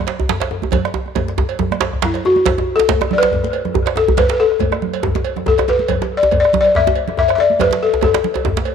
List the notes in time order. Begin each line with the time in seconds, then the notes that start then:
0.07 cowbell, djembe slap
0.20 bombo low, djembe tone, high conga
0.29 djembe slap, low conga, djembe bass
0.40 cowbell, djembe slap
0.51 djembe tone
0.62 high conga, djembe tone
0.72 bombo low, cowbell, high conga, djembe tone, low conga, djembe bass
0.85 bombo rim, djembe slap
0.94 bombo rim, djembe tone
1.06 bombo rim, high conga
1.15 cowbell, djembe tone, high conga, low conga, djembe bass
1.28 bombo rim, djembe slap
1.38 bombo low, djembe tone
1.49 cowbell
1.59 djembe tone, high conga, low conga, djembe bass
1.71 bombo rim, djembe slap, high conga
1.80 bombo rim, cowbell, djembe slap, djembe tone
1.93 bombo rim, bombo low, djembe slap
2.02 E4, djembe slap, low conga, djembe bass
2.14 bombo rim, cowbell, djembe slap
2.24 F#4, djembe slap, high conga, djembe tone
2.36 bombo rim, high conga
2.46 bombo low, cowbell, djembe slap, low conga, djembe bass
2.58 bombo rim, djembe slap, djembe tone
2.76 A4, djembe slap
2.80 bombo rim
2.88 bombo low, cowbell, djembe slap, high conga, djembe bass
3.01 bombo rim, djembe slap, djembe tone
3.11 D5, bombo rim, low conga
3.18 B4, cowbell
3.22 bombo rim, djembe slap
3.32 bombo rim, bombo low, djembe tone, djembe bass
3.44 bombo rim, djembe slap, high conga
3.53 cowbell
3.65 bombo rim, djembe tone, low conga
3.74 bombo low, djembe bass
3.86 bombo rim, cowbell, djembe slap
3.96 A4, djembe slap, djembe tone
4.08 high conga, djembe bass
4.17 B4, bombo low, cowbell, djembe slap, low conga, djembe bass
4.29 bombo rim, djembe slap, djembe tone
4.33 B4
4.40 A4
4.52 bombo rim
4.59 bombo low, cowbell, high conga, djembe bass
4.72 bombo rim, djembe slap, djembe tone
4.82 bombo rim, low conga
4.93 bombo rim, cowbell
5.03 bombo rim, bombo low, djembe tone, djembe bass
5.15 bombo rim, djembe slap, high conga, djembe tone
5.24 cowbell
5.36 bombo rim, djembe tone, low conga
5.46 A4, bombo low, djembe tone, djembe bass
5.58 bombo rim, cowbell, djembe slap, djembe tone
5.68 B4, djembe tone
5.79 high conga
5.88 bombo low, cowbell, low conga, djembe bass
6.02 bombo rim, djembe slap, djembe tone
6.17 D5
6.23 bombo rim, djembe tone
6.31 bombo low, cowbell, high conga, djembe bass
6.40 D5
6.45 bombo rim, djembe tone
6.53 bombo rim, djembe tone, low conga
6.61 D5, cowbell
6.66 bombo rim
6.75 E5, bombo rim, bombo low, djembe tone, djembe bass
6.87 djembe slap, high conga, djembe tone
6.95 cowbell
7.08 bombo rim, djembe tone, low conga
7.17 E5, bombo low, djembe bass
7.28 bombo rim, cowbell, djembe slap
7.35 E5, djembe tone
7.40 D5
7.50 high conga
7.59 B4, bombo low, cowbell, djembe tone, low conga, djembe bass
7.71 djembe slap, djembe tone, high conga
7.73 bombo rim, djembe slap
7.81 A4, djembe slap
7.94 djembe tone
8.01 A4, bombo low, cowbell, high conga, djembe tone, djembe bass
8.14 bombo rim, djembe slap, djembe tone
8.24 bombo rim, high conga, low conga
8.34 cowbell, djembe slap, djembe tone
8.45 bombo rim, bombo low, djembe tone, high conga, djembe bass
8.57 bombo rim, djembe slap, high conga
8.65 cowbell, djembe slap